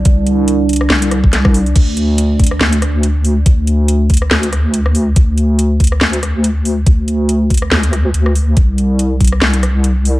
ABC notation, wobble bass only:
X:1
M:4/4
L:1/8
Q:"Swing 16ths" 1/4=141
K:Cmix
V:1 name="Wobble bass" clef=bass
C,,4 C,,4 | D,,4 D,,4 | D,,4 D,,4 | D,,4 D,,4 |
D,,4 D,,2 D,,2 | C,,4 C,,4 |]